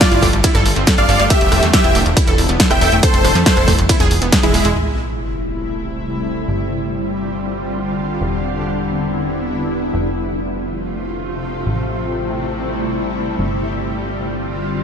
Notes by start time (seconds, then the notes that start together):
Already playing: D3 G3 C4 F4
0.01 F4 D5, kick, snare, closed hi-hat, ride
0.12 G1 E4, closed hi-hat
0.22 G1 A3, kick, open hi-hat
0.33 G1, closed hi-hat
0.44 E4, kick, closed hi-hat, ride
0.55 G1 A4, snare, closed hi-hat
0.65 G1, open hi-hat
0.76 G1 C4, closed hi-hat
0.87 A4, kick, snare, closed hi-hat, ride
0.98 G1 D5 F5, closed hi-hat
1.09 G1 A4, open hi-hat
1.19 G1 A3, closed hi-hat
1.30 A3 B3 E4 G4 E5, kick, closed hi-hat, ride
1.41 E1, closed hi-hat
1.52 E1 A3, cross-stick, open hi-hat
1.63 E2 A3, closed hi-hat
1.74 G4 E5, kick, snare, closed hi-hat, ride
1.84 E1 E4, closed hi-hat
1.95 E1 A3, open hi-hat
2.06 E1, closed hi-hat
2.17 E4, kick, closed hi-hat, ride
2.27 E1 A4, closed hi-hat
2.38 E1, open hi-hat
2.49 E1 B3, closed hi-hat
2.60 A4, kick, snare, closed hi-hat, ride
2.71 E1 E5 G5, cross-stick, closed hi-hat
2.81 E1 A4, open hi-hat
2.92 E1 A3, closed hi-hat
3.03 C3 F3 A3 F4 A4 C5, kick, closed hi-hat, ride
3.14 F1, closed hi-hat
3.25 F1 A3, cross-stick, open hi-hat
3.35 F2 A3, closed hi-hat
3.46 A4 C5, kick, snare, closed hi-hat, ride
3.57 F1 E4, cross-stick, closed hi-hat
3.68 F1 A3, kick, open hi-hat
3.79 F1, closed hi-hat
3.89 B2 E3 G#3 E4, kick, closed hi-hat, ride
4.00 E1 G#4, snare, closed hi-hat
4.11 E1, open hi-hat
4.22 E1 B3, closed hi-hat
4.32 G#4, kick, snare, closed hi-hat, ride
4.43 E1 G#3 E4, closed hi-hat
4.54 E1 G#4, open hi-hat
4.65 E1 G#3, closed hi-hat
4.76 A1 C3 G3 A3 E4, crash, sub drop
6.48 G1 D3 C4 F4
8.21 E1 B3 E4
9.94 F1 C3 F3 A3 F4
11.66 A1 G3 A3 E4
13.39 G1 D3 G3 C4 F4